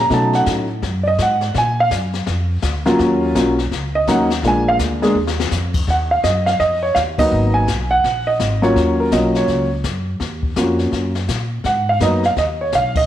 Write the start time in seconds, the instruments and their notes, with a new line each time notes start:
0.00 grand piano A#5
0.10 upright bass B2, grand piano F#3 A3 C#4 D#4 A5, brush sweep, kick, snare
0.33 grand piano F#5, snare
0.46 upright bass A2, kick, snare, hi-hat pedal
0.82 upright bass F#2, brush sweep, kick, snare
1.03 grand piano D5
1.08 grand piano D#5
1.18 upright bass G#2, kick, snare, hi-hat pedal
1.22 grand piano F#5
1.41 snare
1.54 upright bass A#2, grand piano G#5, brush sweep, kick, snare
1.80 grand piano F5
1.91 upright bass F#2, kick, snare, hi-hat pedal
2.13 snare
2.27 upright bass F2, brush sweep, kick, snare
2.62 upright bass D2, kick, snare, hi-hat pedal
2.85 grand piano F#3 A#3 C#4 F4, snare
2.99 upright bass D#2, brush sweep, kick, snare
3.35 upright bass B1, grand piano F#3 A#3 C#4 F4, kick, snare, hi-hat pedal
3.58 snare
3.71 upright bass C#2, brush sweep, kick, snare
3.95 grand piano D#5
4.07 upright bass D#2, grand piano F#3 A#3 C#4 D#4 F#5, kick, snare, hi-hat pedal
4.30 snare
4.43 upright bass A#1, grand piano G#3 A#3 D4 F4, brush sweep, kick, snare
4.48 grand piano G#5
4.68 grand piano F5
4.79 upright bass D2, kick, snare, hi-hat pedal
5.02 grand piano G#3 A#3 D4 G#4, snare
5.15 upright bass D#2
5.27 snare
5.40 snare
5.51 upright bass F2, snare, hi-hat pedal
5.74 kick, crash
5.87 upright bass D#2, grand piano F#5, brush sweep, kick, snare
6.11 grand piano F5
6.23 upright bass F#2, grand piano D#5, kick, snare, hi-hat pedal
6.46 grand piano F5, snare
6.59 upright bass F2, grand piano D#5, brush sweep, kick, snare
6.83 grand piano C#5
6.95 upright bass D#2, grand piano F5, kick, snare, hi-hat pedal
7.18 grand piano F#3 A#3 B3 D#4 D#5, kick, crash
7.31 upright bass G#1, brush sweep
7.54 grand piano G#5
7.68 upright bass B1, kick, snare, hi-hat pedal
7.91 grand piano F#5
8.04 upright bass A#1, brush sweep, kick, snare
8.27 grand piano D#5
8.39 upright bass G#1, kick, snare, hi-hat pedal
8.62 grand piano F#3 A#3 C#4 F4 C#5, snare
8.76 upright bass D#2, brush sweep, kick, snare
9.00 grand piano A#4
9.12 upright bass B1, grand piano F#3 A#3 C#4 F4 D#5, kick, snare, hi-hat pedal
9.35 grand piano C#5, snare
9.47 upright bass C#2, brush sweep, kick, snare
9.84 upright bass F#2, kick, snare, hi-hat pedal
10.20 upright bass D#2, brush sweep, kick, snare
10.43 kick
10.56 upright bass F2, grand piano A#3 C#4 F4 F#4, kick, snare, hi-hat pedal
10.79 snare
10.92 upright bass F#2, brush sweep, kick, snare
11.15 snare
11.28 upright bass A#2, kick, snare, hi-hat pedal
11.64 upright bass G#2, grand piano F#5, brush sweep, kick, snare
11.89 grand piano F5
12.00 upright bass F#2, grand piano F#3 A#3 B3 D#4 D#5, kick, snare, hi-hat pedal
12.23 grand piano F5, snare
12.36 upright bass D#2, grand piano D#5, brush sweep, kick, snare
12.61 grand piano C#5
12.72 upright bass B1, grand piano F5, kick, snare, hi-hat pedal
12.95 grand piano D#5, kick, crash